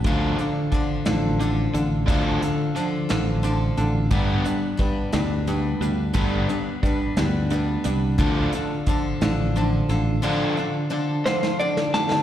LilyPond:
<<
  \new Staff \with { instrumentName = "Clean electric guitar" } { \time 6/8 \key d \dorian \tempo 4. = 59 r2. | r2. | r2. | r2. |
r2. | r4. c''8 d''8 a''8 | }
  \new Staff \with { instrumentName = "Overdriven electric guitar" } { \time 6/8 \key d \dorian <d d' f'>8 <d d'>8 <d d'>8 <d d'>8 <d d'>8 <d d'>8 | <d d' f'>8 <d d'>8 <d d'>8 <d d'>8 <d d'>8 <d d'>8 | <g b d'>8 <g d'>8 <g d'>8 <g d'>8 <g d'>8 <g d'>8 | <g b d'>8 <g d'>8 <g d'>8 <g d'>8 <g d'>8 <g d'>8 |
<d d' f'>8 <d d'>8 <d d'>8 <d d'>8 <d d'>8 <d d'>8 | <d d' f'>8 <d d'>8 <d d'>8 <d d'>8 <d d'>8 <d d'>8 | }
  \new Staff \with { instrumentName = "Steel-string acoustic guitar" } { \time 6/8 \key d \dorian <d f d' f' a'>8 <d' f' a'>8 <f d' f' a'>8 <d f d' f' a'>8 <f d' f' a'>8 <d' f' a'>8 | <d f d' f' a'>8 <d' f' a'>8 <f d' f' a'>8 <d f d' f' a'>8 <f d' f' a'>8 <d' f' a'>8 | <g, d g b d' b'>8 <g b d' b'>8 <g b d' b'>8 <g, d g b d' b'>8 <g b d' b'>8 <g b d' b'>8 | <g, d g b d' b'>8 <g b d' b'>8 <g b d' b'>8 <g, d g b d' b'>8 <g b d' b'>8 <g b d' b'>8 |
<d f d' f' a'>8 <d' f' a'>8 <f d' f' a'>8 <d f d' f' a'>8 <f d' f' a'>8 <d' f' a'>8 | <d f d' f' a'>8 <d' f' a'>8 <f d' f' a'>8 <d f d' f' a'>8 <f d' f' a'>8 <d' f' a'>8 | }
  \new Staff \with { instrumentName = "Fingered electric bass" } { \clef bass \time 6/8 \key d \dorian d,8 r4 a,,4 a,,8 | d,8 r4 a,,4 a,,8 | g,,8 r4 d,4 d,8 | g,,8 r4 d,4 c,8 |
d,8 r4 a,,4 a,,8 | r2. | }
  \new DrumStaff \with { instrumentName = "Drums" } \drummode { \time 6/8 <hh bd>8 hh8 <hh bd>8 <hh sn>8 hh8 hh8 | <hh bd>8 hh8 hh8 <hh sn>8 hh8 hh8 | <hh bd>8 hh8 <hh bd>8 <hh sn>8 hh8 hh8 | <hh bd>8 hh8 <hh bd>8 <hh sn>8 hh8 hh8 |
<hh bd>8 hh8 <hh bd>8 <hh sn>8 hh8 hh8 | r4. sn16 sn8 sn16 sn16 sn16 | }
>>